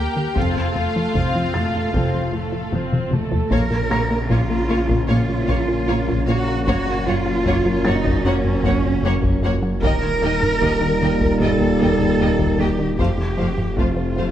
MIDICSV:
0, 0, Header, 1, 12, 480
1, 0, Start_track
1, 0, Key_signature, -5, "minor"
1, 0, Tempo, 789474
1, 218, Time_signature, 4, 2, 24, 8
1, 8704, End_track
2, 0, Start_track
2, 0, Title_t, "Felt piano"
2, 0, Program_c, 0, 0
2, 0, Control_c, 0, 64, 127
2, 230, Control_c, 0, 64, 0
2, 331, Control_c, 0, 64, 127
2, 936, Note_on_c, 0, 93, 36
2, 2113, Note_off_c, 0, 93, 0
2, 2150, Control_c, 0, 64, 0
2, 2248, Control_c, 0, 64, 127
2, 2374, Note_on_c, 0, 82, 37
2, 2379, Note_on_c, 0, 94, 58
2, 3792, Note_off_c, 0, 82, 0
2, 3794, Note_off_c, 0, 94, 0
2, 4070, Control_c, 0, 64, 0
2, 4184, Control_c, 0, 64, 127
2, 4770, Note_on_c, 0, 93, 60
2, 5990, Control_c, 0, 64, 0
2, 6072, Control_c, 0, 64, 127
2, 6190, Note_off_c, 0, 93, 0
2, 7910, Control_c, 0, 64, 0
2, 8019, Control_c, 0, 64, 127
2, 8704, End_track
3, 0, Start_track
3, 0, Title_t, "Violin section"
3, 0, Program_c, 1, 48
3, 0, Note_on_c, 1, 79, 71
3, 222, Note_off_c, 1, 79, 0
3, 229, Note_on_c, 1, 77, 65
3, 1664, Note_off_c, 1, 77, 0
3, 2138, Note_on_c, 1, 77, 51
3, 2187, Note_off_c, 1, 77, 0
3, 2384, Note_on_c, 1, 77, 50
3, 2432, Note_off_c, 1, 77, 0
3, 2622, Note_on_c, 1, 77, 40
3, 2670, Note_off_c, 1, 77, 0
3, 2855, Note_on_c, 1, 77, 47
3, 2903, Note_off_c, 1, 77, 0
3, 3094, Note_on_c, 1, 77, 57
3, 3143, Note_off_c, 1, 77, 0
3, 3328, Note_on_c, 1, 77, 55
3, 3377, Note_off_c, 1, 77, 0
3, 3573, Note_on_c, 1, 77, 53
3, 3622, Note_off_c, 1, 77, 0
3, 3817, Note_on_c, 1, 77, 60
3, 3866, Note_off_c, 1, 77, 0
3, 4060, Note_on_c, 1, 78, 61
3, 4109, Note_off_c, 1, 78, 0
3, 4302, Note_on_c, 1, 78, 61
3, 4350, Note_off_c, 1, 78, 0
3, 4544, Note_on_c, 1, 78, 59
3, 4592, Note_off_c, 1, 78, 0
3, 4790, Note_on_c, 1, 78, 61
3, 4839, Note_off_c, 1, 78, 0
3, 5018, Note_on_c, 1, 78, 70
3, 5066, Note_off_c, 1, 78, 0
3, 5256, Note_on_c, 1, 78, 61
3, 5305, Note_off_c, 1, 78, 0
3, 5499, Note_on_c, 1, 78, 65
3, 5548, Note_off_c, 1, 78, 0
3, 5740, Note_on_c, 1, 78, 62
3, 5789, Note_off_c, 1, 78, 0
3, 5976, Note_on_c, 1, 79, 64
3, 6024, Note_off_c, 1, 79, 0
3, 6221, Note_on_c, 1, 79, 60
3, 6269, Note_off_c, 1, 79, 0
3, 6468, Note_on_c, 1, 79, 52
3, 6516, Note_off_c, 1, 79, 0
3, 6711, Note_on_c, 1, 79, 56
3, 6759, Note_off_c, 1, 79, 0
3, 6940, Note_on_c, 1, 79, 57
3, 6989, Note_off_c, 1, 79, 0
3, 7185, Note_on_c, 1, 79, 46
3, 7234, Note_off_c, 1, 79, 0
3, 7426, Note_on_c, 1, 79, 48
3, 7474, Note_off_c, 1, 79, 0
3, 7667, Note_on_c, 1, 79, 52
3, 7716, Note_off_c, 1, 79, 0
3, 7905, Note_on_c, 1, 77, 51
3, 7953, Note_off_c, 1, 77, 0
3, 8146, Note_on_c, 1, 77, 42
3, 8195, Note_off_c, 1, 77, 0
3, 8383, Note_on_c, 1, 77, 41
3, 8432, Note_off_c, 1, 77, 0
3, 8626, Note_on_c, 1, 77, 43
3, 8675, Note_off_c, 1, 77, 0
3, 8704, End_track
4, 0, Start_track
4, 0, Title_t, "Violin section"
4, 0, Program_c, 2, 48
4, 0, Note_on_c, 2, 67, 71
4, 199, Note_off_c, 2, 67, 0
4, 218, Note_on_c, 2, 65, 63
4, 1658, Note_off_c, 2, 65, 0
4, 2135, Note_on_c, 2, 73, 63
4, 2184, Note_off_c, 2, 73, 0
4, 2377, Note_on_c, 2, 73, 50
4, 2425, Note_off_c, 2, 73, 0
4, 2615, Note_on_c, 2, 73, 46
4, 2664, Note_off_c, 2, 73, 0
4, 2853, Note_on_c, 2, 73, 49
4, 2902, Note_off_c, 2, 73, 0
4, 3083, Note_on_c, 2, 73, 56
4, 3132, Note_off_c, 2, 73, 0
4, 3333, Note_on_c, 2, 73, 50
4, 3382, Note_off_c, 2, 73, 0
4, 3576, Note_on_c, 2, 73, 59
4, 3624, Note_off_c, 2, 73, 0
4, 3822, Note_on_c, 2, 73, 52
4, 3871, Note_off_c, 2, 73, 0
4, 4059, Note_on_c, 2, 73, 76
4, 4108, Note_off_c, 2, 73, 0
4, 4300, Note_on_c, 2, 73, 56
4, 4348, Note_off_c, 2, 73, 0
4, 4539, Note_on_c, 2, 73, 61
4, 4588, Note_off_c, 2, 73, 0
4, 4784, Note_on_c, 2, 73, 68
4, 4833, Note_off_c, 2, 73, 0
4, 5027, Note_on_c, 2, 73, 65
4, 5076, Note_off_c, 2, 73, 0
4, 5265, Note_on_c, 2, 73, 59
4, 5314, Note_off_c, 2, 73, 0
4, 5507, Note_on_c, 2, 73, 65
4, 5556, Note_off_c, 2, 73, 0
4, 5745, Note_on_c, 2, 73, 62
4, 5793, Note_off_c, 2, 73, 0
4, 5987, Note_on_c, 2, 75, 68
4, 6036, Note_off_c, 2, 75, 0
4, 6232, Note_on_c, 2, 75, 59
4, 6281, Note_off_c, 2, 75, 0
4, 6469, Note_on_c, 2, 75, 53
4, 6518, Note_off_c, 2, 75, 0
4, 6707, Note_on_c, 2, 75, 52
4, 6756, Note_off_c, 2, 75, 0
4, 6950, Note_on_c, 2, 75, 60
4, 6999, Note_off_c, 2, 75, 0
4, 7188, Note_on_c, 2, 75, 50
4, 7237, Note_off_c, 2, 75, 0
4, 7426, Note_on_c, 2, 75, 54
4, 7474, Note_off_c, 2, 75, 0
4, 7666, Note_on_c, 2, 75, 46
4, 7715, Note_off_c, 2, 75, 0
4, 7894, Note_on_c, 2, 72, 57
4, 7943, Note_off_c, 2, 72, 0
4, 8135, Note_on_c, 2, 72, 43
4, 8184, Note_off_c, 2, 72, 0
4, 8382, Note_on_c, 2, 72, 45
4, 8430, Note_off_c, 2, 72, 0
4, 8623, Note_on_c, 2, 72, 43
4, 8671, Note_off_c, 2, 72, 0
4, 8704, End_track
5, 0, Start_track
5, 0, Title_t, "Cello section"
5, 0, Program_c, 3, 48
5, 0, Note_on_c, 3, 39, 62
5, 149, Note_off_c, 3, 39, 0
5, 220, Note_on_c, 3, 41, 66
5, 627, Note_off_c, 3, 41, 0
5, 694, Note_on_c, 3, 45, 55
5, 919, Note_off_c, 3, 45, 0
5, 937, Note_on_c, 3, 46, 60
5, 1173, Note_off_c, 3, 46, 0
5, 1179, Note_on_c, 3, 48, 65
5, 1419, Note_off_c, 3, 48, 0
5, 1423, Note_on_c, 3, 45, 57
5, 1660, Note_on_c, 3, 41, 58
5, 1661, Note_off_c, 3, 45, 0
5, 1891, Note_on_c, 3, 39, 50
5, 1895, Note_off_c, 3, 41, 0
5, 2130, Note_off_c, 3, 39, 0
5, 2134, Note_on_c, 3, 70, 85
5, 2592, Note_off_c, 3, 70, 0
5, 2615, Note_on_c, 3, 65, 78
5, 3093, Note_off_c, 3, 65, 0
5, 3101, Note_on_c, 3, 65, 81
5, 3805, Note_off_c, 3, 65, 0
5, 3824, Note_on_c, 3, 66, 90
5, 4051, Note_off_c, 3, 66, 0
5, 4058, Note_on_c, 3, 66, 97
5, 4293, Note_off_c, 3, 66, 0
5, 4300, Note_on_c, 3, 65, 94
5, 4777, Note_on_c, 3, 63, 102
5, 4779, Note_off_c, 3, 65, 0
5, 5015, Note_on_c, 3, 61, 90
5, 5018, Note_off_c, 3, 63, 0
5, 5737, Note_off_c, 3, 61, 0
5, 5975, Note_on_c, 3, 70, 113
5, 6913, Note_off_c, 3, 70, 0
5, 6939, Note_on_c, 3, 69, 93
5, 7654, Note_on_c, 3, 67, 76
5, 7659, Note_off_c, 3, 69, 0
5, 7886, Note_off_c, 3, 67, 0
5, 7893, Note_on_c, 3, 67, 75
5, 8366, Note_off_c, 3, 67, 0
5, 8376, Note_on_c, 3, 65, 60
5, 8704, Note_off_c, 3, 65, 0
5, 8704, End_track
6, 0, Start_track
6, 0, Title_t, "French horn section"
6, 0, Program_c, 4, 60
6, 227, Note_on_c, 4, 60, 52
6, 233, Note_on_c, 4, 69, 48
6, 398, Note_off_c, 4, 60, 0
6, 401, Note_off_c, 4, 69, 0
6, 1181, Note_on_c, 4, 60, 57
6, 1185, Note_on_c, 4, 69, 52
6, 1355, Note_off_c, 4, 60, 0
6, 1356, Note_off_c, 4, 69, 0
6, 2143, Note_on_c, 4, 61, 66
6, 2144, Note_on_c, 4, 58, 71
6, 5879, Note_off_c, 4, 58, 0
6, 5879, Note_off_c, 4, 61, 0
6, 5983, Note_on_c, 4, 58, 78
6, 5985, Note_on_c, 4, 63, 79
6, 7876, Note_off_c, 4, 58, 0
6, 7877, Note_off_c, 4, 63, 0
6, 7901, Note_on_c, 4, 57, 59
6, 7903, Note_on_c, 4, 65, 60
6, 8704, Note_off_c, 4, 57, 0
6, 8704, Note_off_c, 4, 65, 0
6, 8704, End_track
7, 0, Start_track
7, 0, Title_t, "Viola section"
7, 0, Program_c, 5, 48
7, 0, Note_on_c, 5, 58, 45
7, 0, Note_on_c, 5, 70, 47
7, 221, Note_off_c, 5, 58, 0
7, 221, Note_off_c, 5, 70, 0
7, 221, Note_on_c, 5, 60, 51
7, 221, Note_on_c, 5, 65, 54
7, 443, Note_off_c, 5, 60, 0
7, 443, Note_off_c, 5, 65, 0
7, 458, Note_on_c, 5, 57, 43
7, 458, Note_on_c, 5, 69, 44
7, 698, Note_off_c, 5, 57, 0
7, 698, Note_off_c, 5, 69, 0
7, 698, Note_on_c, 5, 65, 41
7, 700, Note_on_c, 5, 60, 50
7, 938, Note_off_c, 5, 65, 0
7, 939, Note_off_c, 5, 60, 0
7, 942, Note_on_c, 5, 57, 42
7, 943, Note_on_c, 5, 69, 41
7, 1177, Note_on_c, 5, 60, 37
7, 1178, Note_on_c, 5, 65, 40
7, 1180, Note_off_c, 5, 57, 0
7, 1181, Note_off_c, 5, 69, 0
7, 1401, Note_off_c, 5, 60, 0
7, 1401, Note_off_c, 5, 65, 0
7, 1422, Note_on_c, 5, 69, 42
7, 1423, Note_on_c, 5, 57, 41
7, 1659, Note_on_c, 5, 60, 47
7, 1659, Note_on_c, 5, 65, 43
7, 1660, Note_off_c, 5, 69, 0
7, 1661, Note_off_c, 5, 57, 0
7, 1899, Note_off_c, 5, 60, 0
7, 1899, Note_off_c, 5, 65, 0
7, 1901, Note_on_c, 5, 69, 42
7, 1902, Note_on_c, 5, 57, 41
7, 2137, Note_on_c, 5, 58, 56
7, 2140, Note_off_c, 5, 57, 0
7, 2140, Note_off_c, 5, 69, 0
7, 2185, Note_off_c, 5, 58, 0
7, 2379, Note_on_c, 5, 58, 50
7, 2428, Note_off_c, 5, 58, 0
7, 2614, Note_on_c, 5, 58, 57
7, 2663, Note_off_c, 5, 58, 0
7, 2854, Note_on_c, 5, 58, 50
7, 2903, Note_off_c, 5, 58, 0
7, 3102, Note_on_c, 5, 58, 46
7, 3151, Note_off_c, 5, 58, 0
7, 3345, Note_on_c, 5, 58, 48
7, 3393, Note_off_c, 5, 58, 0
7, 3585, Note_on_c, 5, 58, 56
7, 3634, Note_off_c, 5, 58, 0
7, 3825, Note_on_c, 5, 58, 51
7, 3874, Note_off_c, 5, 58, 0
7, 4064, Note_on_c, 5, 58, 75
7, 4112, Note_off_c, 5, 58, 0
7, 4299, Note_on_c, 5, 58, 51
7, 4348, Note_off_c, 5, 58, 0
7, 4543, Note_on_c, 5, 58, 64
7, 4592, Note_off_c, 5, 58, 0
7, 4781, Note_on_c, 5, 58, 57
7, 4829, Note_off_c, 5, 58, 0
7, 5020, Note_on_c, 5, 58, 68
7, 5068, Note_off_c, 5, 58, 0
7, 5257, Note_on_c, 5, 58, 59
7, 5306, Note_off_c, 5, 58, 0
7, 5501, Note_on_c, 5, 58, 67
7, 5550, Note_off_c, 5, 58, 0
7, 5739, Note_on_c, 5, 58, 60
7, 5788, Note_off_c, 5, 58, 0
7, 5973, Note_on_c, 5, 58, 71
7, 6022, Note_off_c, 5, 58, 0
7, 6212, Note_on_c, 5, 58, 61
7, 6261, Note_off_c, 5, 58, 0
7, 6450, Note_on_c, 5, 58, 62
7, 6499, Note_off_c, 5, 58, 0
7, 6697, Note_on_c, 5, 58, 54
7, 6746, Note_off_c, 5, 58, 0
7, 6936, Note_on_c, 5, 58, 49
7, 6985, Note_off_c, 5, 58, 0
7, 7175, Note_on_c, 5, 58, 50
7, 7223, Note_off_c, 5, 58, 0
7, 7413, Note_on_c, 5, 58, 50
7, 7462, Note_off_c, 5, 58, 0
7, 7655, Note_on_c, 5, 58, 45
7, 7703, Note_off_c, 5, 58, 0
7, 7903, Note_on_c, 5, 57, 53
7, 7951, Note_off_c, 5, 57, 0
7, 8136, Note_on_c, 5, 57, 44
7, 8185, Note_off_c, 5, 57, 0
7, 8377, Note_on_c, 5, 57, 53
7, 8425, Note_off_c, 5, 57, 0
7, 8617, Note_on_c, 5, 57, 38
7, 8666, Note_off_c, 5, 57, 0
7, 8704, End_track
8, 0, Start_track
8, 0, Title_t, "Trombone section"
8, 0, Program_c, 6, 61
8, 2131, Note_on_c, 6, 46, 69
8, 2133, Note_on_c, 6, 49, 72
8, 4032, Note_off_c, 6, 49, 0
8, 4056, Note_on_c, 6, 54, 90
8, 5875, Note_off_c, 6, 46, 0
8, 5875, Note_off_c, 6, 54, 0
8, 5979, Note_on_c, 6, 46, 87
8, 5981, Note_on_c, 6, 55, 92
8, 7874, Note_off_c, 6, 46, 0
8, 7876, Note_off_c, 6, 55, 0
8, 7894, Note_on_c, 6, 53, 70
8, 7896, Note_on_c, 6, 48, 68
8, 8704, Note_off_c, 6, 48, 0
8, 8704, Note_off_c, 6, 53, 0
8, 8704, End_track
9, 0, Start_track
9, 0, Title_t, "Analog synth bass"
9, 0, Program_c, 7, 38
9, 100, Note_on_c, 7, 51, 53
9, 171, Note_off_c, 7, 51, 0
9, 217, Note_on_c, 7, 41, 81
9, 290, Note_off_c, 7, 41, 0
9, 341, Note_on_c, 7, 41, 50
9, 412, Note_off_c, 7, 41, 0
9, 460, Note_on_c, 7, 41, 61
9, 532, Note_off_c, 7, 41, 0
9, 584, Note_on_c, 7, 53, 56
9, 654, Note_off_c, 7, 53, 0
9, 699, Note_on_c, 7, 41, 71
9, 771, Note_off_c, 7, 41, 0
9, 823, Note_on_c, 7, 53, 54
9, 894, Note_off_c, 7, 53, 0
9, 941, Note_on_c, 7, 41, 58
9, 1013, Note_off_c, 7, 41, 0
9, 1065, Note_on_c, 7, 41, 53
9, 1135, Note_off_c, 7, 41, 0
9, 1179, Note_on_c, 7, 41, 82
9, 1251, Note_off_c, 7, 41, 0
9, 1302, Note_on_c, 7, 41, 53
9, 1373, Note_off_c, 7, 41, 0
9, 1415, Note_on_c, 7, 53, 57
9, 1488, Note_off_c, 7, 53, 0
9, 1533, Note_on_c, 7, 53, 48
9, 1606, Note_off_c, 7, 53, 0
9, 1655, Note_on_c, 7, 41, 72
9, 1728, Note_off_c, 7, 41, 0
9, 1778, Note_on_c, 7, 41, 45
9, 1850, Note_off_c, 7, 41, 0
9, 1890, Note_on_c, 7, 41, 55
9, 1965, Note_off_c, 7, 41, 0
9, 2014, Note_on_c, 7, 53, 59
9, 2088, Note_off_c, 7, 53, 0
9, 2131, Note_on_c, 7, 46, 75
9, 2205, Note_off_c, 7, 46, 0
9, 2253, Note_on_c, 7, 46, 57
9, 2327, Note_off_c, 7, 46, 0
9, 2377, Note_on_c, 7, 58, 55
9, 2450, Note_off_c, 7, 58, 0
9, 2498, Note_on_c, 7, 58, 53
9, 2570, Note_off_c, 7, 58, 0
9, 2614, Note_on_c, 7, 46, 78
9, 2687, Note_off_c, 7, 46, 0
9, 2736, Note_on_c, 7, 58, 55
9, 2809, Note_off_c, 7, 58, 0
9, 2857, Note_on_c, 7, 58, 62
9, 2929, Note_off_c, 7, 58, 0
9, 2973, Note_on_c, 7, 46, 84
9, 3047, Note_off_c, 7, 46, 0
9, 3089, Note_on_c, 7, 46, 64
9, 3164, Note_off_c, 7, 46, 0
9, 3219, Note_on_c, 7, 46, 55
9, 3291, Note_off_c, 7, 46, 0
9, 3333, Note_on_c, 7, 46, 91
9, 3406, Note_off_c, 7, 46, 0
9, 3454, Note_on_c, 7, 46, 63
9, 3527, Note_off_c, 7, 46, 0
9, 3574, Note_on_c, 7, 46, 61
9, 3647, Note_off_c, 7, 46, 0
9, 3698, Note_on_c, 7, 46, 79
9, 3770, Note_off_c, 7, 46, 0
9, 3820, Note_on_c, 7, 46, 70
9, 3892, Note_off_c, 7, 46, 0
9, 3938, Note_on_c, 7, 58, 55
9, 4010, Note_off_c, 7, 58, 0
9, 4056, Note_on_c, 7, 42, 81
9, 4129, Note_off_c, 7, 42, 0
9, 4174, Note_on_c, 7, 42, 65
9, 4248, Note_off_c, 7, 42, 0
9, 4294, Note_on_c, 7, 54, 65
9, 4367, Note_off_c, 7, 54, 0
9, 4413, Note_on_c, 7, 54, 65
9, 4487, Note_off_c, 7, 54, 0
9, 4534, Note_on_c, 7, 42, 84
9, 4607, Note_off_c, 7, 42, 0
9, 4653, Note_on_c, 7, 54, 65
9, 4727, Note_off_c, 7, 54, 0
9, 4775, Note_on_c, 7, 54, 68
9, 4848, Note_off_c, 7, 54, 0
9, 4894, Note_on_c, 7, 42, 80
9, 4968, Note_off_c, 7, 42, 0
9, 5014, Note_on_c, 7, 42, 66
9, 5087, Note_off_c, 7, 42, 0
9, 5135, Note_on_c, 7, 42, 61
9, 5208, Note_off_c, 7, 42, 0
9, 5249, Note_on_c, 7, 42, 96
9, 5324, Note_off_c, 7, 42, 0
9, 5370, Note_on_c, 7, 42, 59
9, 5445, Note_off_c, 7, 42, 0
9, 5489, Note_on_c, 7, 42, 58
9, 5564, Note_off_c, 7, 42, 0
9, 5607, Note_on_c, 7, 42, 74
9, 5683, Note_off_c, 7, 42, 0
9, 5729, Note_on_c, 7, 42, 70
9, 5804, Note_off_c, 7, 42, 0
9, 5851, Note_on_c, 7, 54, 68
9, 5925, Note_off_c, 7, 54, 0
9, 5970, Note_on_c, 7, 39, 87
9, 6045, Note_off_c, 7, 39, 0
9, 6090, Note_on_c, 7, 39, 66
9, 6165, Note_off_c, 7, 39, 0
9, 6212, Note_on_c, 7, 51, 58
9, 6286, Note_off_c, 7, 51, 0
9, 6329, Note_on_c, 7, 51, 59
9, 6404, Note_off_c, 7, 51, 0
9, 6454, Note_on_c, 7, 39, 76
9, 6527, Note_off_c, 7, 39, 0
9, 6573, Note_on_c, 7, 51, 64
9, 6646, Note_off_c, 7, 51, 0
9, 6697, Note_on_c, 7, 51, 68
9, 6770, Note_off_c, 7, 51, 0
9, 6812, Note_on_c, 7, 39, 83
9, 6886, Note_off_c, 7, 39, 0
9, 6936, Note_on_c, 7, 39, 67
9, 7009, Note_off_c, 7, 39, 0
9, 7055, Note_on_c, 7, 39, 62
9, 7128, Note_off_c, 7, 39, 0
9, 7180, Note_on_c, 7, 39, 83
9, 7251, Note_off_c, 7, 39, 0
9, 7291, Note_on_c, 7, 39, 61
9, 7365, Note_off_c, 7, 39, 0
9, 7414, Note_on_c, 7, 39, 65
9, 7488, Note_off_c, 7, 39, 0
9, 7533, Note_on_c, 7, 39, 87
9, 7606, Note_off_c, 7, 39, 0
9, 7650, Note_on_c, 7, 39, 66
9, 7724, Note_off_c, 7, 39, 0
9, 7775, Note_on_c, 7, 51, 64
9, 7848, Note_off_c, 7, 51, 0
9, 7897, Note_on_c, 7, 41, 84
9, 7969, Note_off_c, 7, 41, 0
9, 8012, Note_on_c, 7, 41, 58
9, 8086, Note_off_c, 7, 41, 0
9, 8132, Note_on_c, 7, 53, 66
9, 8206, Note_off_c, 7, 53, 0
9, 8251, Note_on_c, 7, 53, 56
9, 8325, Note_off_c, 7, 53, 0
9, 8370, Note_on_c, 7, 41, 79
9, 8444, Note_off_c, 7, 41, 0
9, 8490, Note_on_c, 7, 53, 56
9, 8564, Note_off_c, 7, 53, 0
9, 8611, Note_on_c, 7, 53, 57
9, 8685, Note_off_c, 7, 53, 0
9, 8704, End_track
10, 0, Start_track
10, 0, Title_t, "Double bass section"
10, 0, Program_c, 8, 48
10, 0, Note_on_c, 8, 39, 55
10, 147, Note_off_c, 8, 39, 0
10, 217, Note_on_c, 8, 29, 59
10, 625, Note_off_c, 8, 29, 0
10, 697, Note_on_c, 8, 29, 58
10, 1105, Note_off_c, 8, 29, 0
10, 1177, Note_on_c, 8, 29, 68
10, 1585, Note_off_c, 8, 29, 0
10, 1656, Note_on_c, 8, 29, 49
10, 2065, Note_off_c, 8, 29, 0
10, 2135, Note_on_c, 8, 34, 57
10, 2183, Note_off_c, 8, 34, 0
10, 2377, Note_on_c, 8, 34, 50
10, 2426, Note_off_c, 8, 34, 0
10, 2615, Note_on_c, 8, 34, 55
10, 2664, Note_off_c, 8, 34, 0
10, 2858, Note_on_c, 8, 34, 55
10, 2907, Note_off_c, 8, 34, 0
10, 3098, Note_on_c, 8, 34, 73
10, 3147, Note_off_c, 8, 34, 0
10, 3342, Note_on_c, 8, 34, 57
10, 3391, Note_off_c, 8, 34, 0
10, 3576, Note_on_c, 8, 34, 51
10, 3625, Note_off_c, 8, 34, 0
10, 3819, Note_on_c, 8, 34, 66
10, 3867, Note_off_c, 8, 34, 0
10, 4058, Note_on_c, 8, 42, 77
10, 4107, Note_off_c, 8, 42, 0
10, 4297, Note_on_c, 8, 42, 65
10, 4345, Note_off_c, 8, 42, 0
10, 4538, Note_on_c, 8, 42, 73
10, 4586, Note_off_c, 8, 42, 0
10, 4778, Note_on_c, 8, 42, 74
10, 4826, Note_off_c, 8, 42, 0
10, 5016, Note_on_c, 8, 42, 78
10, 5065, Note_off_c, 8, 42, 0
10, 5258, Note_on_c, 8, 42, 77
10, 5307, Note_off_c, 8, 42, 0
10, 5500, Note_on_c, 8, 42, 72
10, 5549, Note_off_c, 8, 42, 0
10, 5739, Note_on_c, 8, 42, 72
10, 5788, Note_off_c, 8, 42, 0
10, 5979, Note_on_c, 8, 39, 75
10, 6027, Note_off_c, 8, 39, 0
10, 6218, Note_on_c, 8, 39, 65
10, 6266, Note_off_c, 8, 39, 0
10, 6455, Note_on_c, 8, 39, 62
10, 6504, Note_off_c, 8, 39, 0
10, 6699, Note_on_c, 8, 39, 62
10, 6748, Note_off_c, 8, 39, 0
10, 6935, Note_on_c, 8, 39, 70
10, 6984, Note_off_c, 8, 39, 0
10, 7180, Note_on_c, 8, 39, 62
10, 7228, Note_off_c, 8, 39, 0
10, 7415, Note_on_c, 8, 39, 55
10, 7464, Note_off_c, 8, 39, 0
10, 7659, Note_on_c, 8, 39, 54
10, 7708, Note_off_c, 8, 39, 0
10, 7897, Note_on_c, 8, 41, 53
10, 7946, Note_off_c, 8, 41, 0
10, 8137, Note_on_c, 8, 41, 43
10, 8186, Note_off_c, 8, 41, 0
10, 8381, Note_on_c, 8, 41, 52
10, 8429, Note_off_c, 8, 41, 0
10, 8619, Note_on_c, 8, 41, 44
10, 8667, Note_off_c, 8, 41, 0
10, 8704, End_track
11, 0, Start_track
11, 0, Title_t, "Detuned saw bass"
11, 0, Program_c, 10, 39
11, 2134, Note_on_c, 10, 34, 70
11, 4058, Note_on_c, 10, 30, 73
11, 4067, Note_off_c, 10, 34, 0
11, 5973, Note_on_c, 10, 27, 75
11, 5982, Note_off_c, 10, 30, 0
11, 7897, Note_on_c, 10, 29, 73
11, 7906, Note_off_c, 10, 27, 0
11, 8704, Note_off_c, 10, 29, 0
11, 8704, End_track
12, 0, Start_track
12, 0, Title_t, "Taiko and cinematic ensemble drums"
12, 218, Note_on_c, 9, 41, 75
12, 279, Note_off_c, 9, 41, 0
12, 701, Note_on_c, 9, 41, 71
12, 762, Note_off_c, 9, 41, 0
12, 1181, Note_on_c, 9, 41, 72
12, 1241, Note_off_c, 9, 41, 0
12, 1656, Note_on_c, 9, 47, 69
12, 1717, Note_off_c, 9, 47, 0
12, 1779, Note_on_c, 9, 47, 79
12, 1840, Note_off_c, 9, 47, 0
12, 1901, Note_on_c, 9, 47, 86
12, 1962, Note_off_c, 9, 47, 0
12, 2018, Note_on_c, 9, 43, 81
12, 2079, Note_off_c, 9, 43, 0
12, 2139, Note_on_c, 9, 41, 88
12, 2199, Note_off_c, 9, 41, 0
12, 2620, Note_on_c, 9, 41, 73
12, 2681, Note_off_c, 9, 41, 0
12, 2981, Note_on_c, 9, 41, 82
12, 3041, Note_off_c, 9, 41, 0
12, 3338, Note_on_c, 9, 41, 77
12, 3399, Note_off_c, 9, 41, 0
12, 3700, Note_on_c, 9, 41, 70
12, 3761, Note_off_c, 9, 41, 0
12, 4056, Note_on_c, 9, 41, 90
12, 4117, Note_off_c, 9, 41, 0
12, 4537, Note_on_c, 9, 41, 73
12, 4597, Note_off_c, 9, 41, 0
12, 4898, Note_on_c, 9, 41, 86
12, 4959, Note_off_c, 9, 41, 0
12, 5258, Note_on_c, 9, 41, 90
12, 5319, Note_off_c, 9, 41, 0
12, 5618, Note_on_c, 9, 41, 78
12, 5678, Note_off_c, 9, 41, 0
12, 5976, Note_on_c, 9, 41, 88
12, 6037, Note_off_c, 9, 41, 0
12, 6339, Note_on_c, 9, 45, 51
12, 6400, Note_off_c, 9, 45, 0
12, 6456, Note_on_c, 9, 41, 70
12, 6517, Note_off_c, 9, 41, 0
12, 6698, Note_on_c, 9, 45, 48
12, 6759, Note_off_c, 9, 45, 0
12, 6817, Note_on_c, 9, 41, 77
12, 6878, Note_off_c, 9, 41, 0
12, 6944, Note_on_c, 9, 45, 62
12, 7004, Note_off_c, 9, 45, 0
12, 7180, Note_on_c, 9, 41, 81
12, 7240, Note_off_c, 9, 41, 0
12, 7302, Note_on_c, 9, 45, 49
12, 7363, Note_off_c, 9, 45, 0
12, 7540, Note_on_c, 9, 41, 77
12, 7600, Note_off_c, 9, 41, 0
12, 7898, Note_on_c, 9, 41, 80
12, 7959, Note_off_c, 9, 41, 0
12, 8257, Note_on_c, 9, 45, 45
12, 8318, Note_off_c, 9, 45, 0
12, 8380, Note_on_c, 9, 41, 74
12, 8440, Note_off_c, 9, 41, 0
12, 8622, Note_on_c, 9, 45, 49
12, 8683, Note_off_c, 9, 45, 0
12, 8704, End_track
0, 0, End_of_file